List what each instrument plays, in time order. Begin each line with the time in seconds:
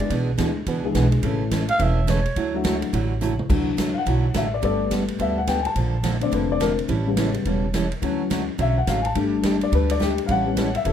Already playing: clarinet D5
0.00 upright piano E4 G#4
0.10 upright bass B1, steel-string acoustic guitar B2 E3 B3 D4 G#4, kick, ride
0.38 upright bass D2, steel-string acoustic guitar B2 E3 B3 D4 G#4, upright piano G#3 B3 D4 E4 G#4, kick, snare, hi-hat pedal, ride
0.66 upright bass C#2, steel-string acoustic guitar B2 E3 B3 D4 G#4, kick, ride
0.84 upright piano G#3 B3 D4 E4 G#4
0.95 upright bass B1, steel-string acoustic guitar B2 E3 B3 D4 G#4, kick, snare, hi-hat pedal, ride
1.12 ride
1.23 upright bass A1, steel-string acoustic guitar C#3 E3 A3 C#4 A4, upright piano E3 A3 C#4 E4 A4, kick, ride
1.51 steel-string acoustic guitar C#3 E3 A3 C#4 A4, kick, snare, hi-hat pedal, ride
1.69 clarinet F5, ride
1.79 upright bass E1, steel-string acoustic guitar C#3 E3 A3 C#4 A4, clarinet E5, kick, ride
2.07 steel-string acoustic guitar C#3 E3 A3 C#4 A4, clarinet C#5, kick, snare, hi-hat pedal, ride
2.26 ride
2.36 upright bass D2, steel-string acoustic guitar D3 F#3 A3 E4 F#4, kick, ride
2.54 upright piano F#3 A3 D4 E4 F#4
2.64 steel-string acoustic guitar D3 F#3 A3 E4 F#4, kick, snare, hi-hat pedal, ride
2.82 ride
2.93 upright bass A1, steel-string acoustic guitar D3 F#3 A3 E4 F#4, kick, ride
3.21 steel-string acoustic guitar D3 F#3 A3 E4 F#4, hi-hat pedal, mid tom
3.39 mid tom
3.49 upright bass D2, steel-string acoustic guitar D3 F#3 A3 E4 F#4, upright piano E3 F#3 D4, kick, crash
3.77 steel-string acoustic guitar D3 F#3 A3 E4 F#4, kick, snare, hi-hat pedal, ride
3.93 upright piano F5
3.98 upright piano F#5
4.06 upright bass B1, steel-string acoustic guitar D3 F#3 A3 E4 F#4, kick, ride
4.34 upright bass A1, steel-string acoustic guitar D3 F#3 A3 E4 F#4, upright piano E5, kick, snare, hi-hat pedal, ride
4.54 upright piano D5
4.62 upright bass G1, steel-string acoustic guitar G3 B3 D4 A4, upright piano G3 A3 B3 A4 D5, kick, ride
4.91 steel-string acoustic guitar G3 B3 D4 A4, kick, snare, hi-hat pedal, ride
5.08 ride
5.19 upright bass D2, steel-string acoustic guitar G3 B3 D4 A4, upright piano E5, kick, ride
5.38 upright piano F#5
5.47 steel-string acoustic guitar G3 B3 D4 A4, upright piano G5, kick, snare, hi-hat pedal, ride
5.62 upright piano G#5, ride
5.66 upright piano A5
5.75 upright bass A#1, steel-string acoustic guitar D3 F3 A#3 D4 A4, kick, ride
6.03 steel-string acoustic guitar D3 F3 A#3 D4 A4, kick, snare, hi-hat pedal, ride
6.21 upright piano D3 A3 C4 D5, ride
6.32 upright bass F1, steel-string acoustic guitar D3 F3 A#3 D4 A4, upright piano B4, kick, ride
6.52 upright piano D5
6.60 steel-string acoustic guitar D3 F3 A#3 D4 A4, upright piano A#4, kick, snare, hi-hat pedal, ride
6.79 ride
6.88 upright bass A1, steel-string acoustic guitar E3 G3 C#4 E4 A4, kick, ride
7.07 upright piano C#3 G3 B3
7.17 steel-string acoustic guitar E3 G3 C#4 E4 A4, kick, snare, hi-hat pedal, ride
7.34 ride
7.45 upright bass E1, upright piano C#3 G3 B3, steel-string acoustic guitar E3 G3 C#4 E4 A4, kick, ride
7.73 steel-string acoustic guitar E3 G3 C#4 E4 A4, kick, snare, hi-hat pedal, ride
7.92 ride
8.02 upright bass D2, steel-string acoustic guitar D3 F#3 A3 C#4 F#4, upright piano E3 F#3 C#4, kick, ride
8.30 steel-string acoustic guitar D3 F#3 A3 C#4 F#4, kick, snare, hi-hat pedal, ride
8.58 upright bass B1, steel-string acoustic guitar D3 F#3 A3 C#4 F#4, upright piano E5, kick, ride
8.78 upright piano F#5
8.87 upright bass A1, steel-string acoustic guitar D3 F#3 A3 C#4 F#4, upright piano F5, kick, snare, hi-hat pedal, ride
9.02 upright piano G#5, ride
9.06 upright piano A5
9.15 upright bass G1, upright piano G3 A3 D4, steel-string acoustic guitar G3 A3 D4 G4, kick, ride
9.43 steel-string acoustic guitar G3 A3 D4 G4, kick, snare, hi-hat pedal, ride
9.61 upright piano D5, ride
9.72 upright bass D2, steel-string acoustic guitar G3 A3 D4 G4, upright piano B4, kick, ride
9.90 upright piano D5, ride
9.99 steel-string acoustic guitar G3 A3 D4 G4, upright piano G4, kick, snare, hi-hat pedal
10.18 ride
10.26 upright bass A1, steel-string acoustic guitar E3 G3 C#4 E4 A4, upright piano F5, kick, ride
10.31 upright piano F#5
10.45 upright piano G3 B3 C#4
10.57 steel-string acoustic guitar E3 G3 C#4 E4 A4, kick, snare, hi-hat pedal, ride
10.75 upright piano E5, ride
10.85 upright bass E1, steel-string acoustic guitar E3 G3 C#4 E4 A4, upright piano A4, kick, ride